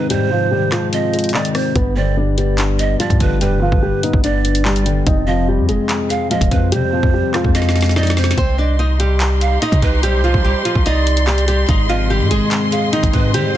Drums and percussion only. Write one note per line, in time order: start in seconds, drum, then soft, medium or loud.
0.10 closed hi-hat medium
0.72 cross-stick loud
0.72 clap medium
0.72 closed hi-hat medium
0.93 closed hi-hat medium
1.14 closed hi-hat soft
1.19 closed hi-hat medium
1.24 closed hi-hat medium
1.29 closed hi-hat medium
1.34 clap loud
1.45 closed hi-hat medium
1.55 cross-stick loud
1.55 open hi-hat medium
1.76 kick loud
1.76 closed hi-hat medium
2.38 closed hi-hat medium
2.58 clap loud
2.58 closed hi-hat medium
2.79 closed hi-hat medium
3.00 closed hi-hat medium
3.10 kick medium
3.10 closed hi-hat medium
3.20 kick loud
3.20 closed hi-hat medium
3.41 closed hi-hat medium
3.72 kick loud
4.03 closed hi-hat medium
4.13 kick loud
4.24 closed hi-hat medium
4.45 closed hi-hat medium
4.55 closed hi-hat medium
4.65 clap loud
4.76 closed hi-hat medium
4.86 closed hi-hat medium
5.07 kick loud
5.07 closed hi-hat medium
5.69 closed hi-hat medium
5.89 clap loud
5.89 closed hi-hat medium
6.10 closed hi-hat medium
6.31 closed hi-hat medium
6.41 kick medium
6.41 closed hi-hat medium
6.51 kick loud
6.51 closed hi-hat medium
6.72 closed hi-hat medium
7.03 kick loud
7.34 cross-stick loud
7.34 clap medium
7.34 closed hi-hat medium
7.44 kick loud
7.55 snare medium
7.55 closed hi-hat medium
7.62 snare medium
7.69 snare medium
7.76 snare medium
7.76 closed hi-hat soft
7.81 snare medium
7.81 closed hi-hat medium
7.86 snare medium
7.86 closed hi-hat medium
7.91 closed hi-hat medium
7.96 snare medium
8.03 snare medium
8.03 closed hi-hat medium
8.10 snare medium
8.17 snare medium
8.17 open hi-hat medium
8.24 snare loud
8.31 snare medium
8.38 kick loud
8.38 closed hi-hat medium
9.00 closed hi-hat medium
9.20 clap loud
9.20 closed hi-hat medium
9.41 closed hi-hat medium
9.62 closed hi-hat medium
9.72 kick medium
9.72 closed hi-hat medium
9.82 kick medium
9.82 closed hi-hat medium
10.03 closed hi-hat medium
10.34 kick loud
10.65 closed hi-hat medium
10.75 kick medium
10.86 closed hi-hat medium
11.07 closed hi-hat medium
11.17 closed hi-hat medium
11.27 clap loud
11.38 closed hi-hat medium
11.48 closed hi-hat medium
11.69 kick loud
11.69 closed hi-hat medium
12.31 closed hi-hat medium
12.51 clap loud
12.51 closed hi-hat medium
12.72 closed hi-hat medium
12.93 closed hi-hat medium
13.03 kick medium
13.03 closed hi-hat medium
13.13 kick loud
13.13 closed hi-hat medium
13.34 closed hi-hat medium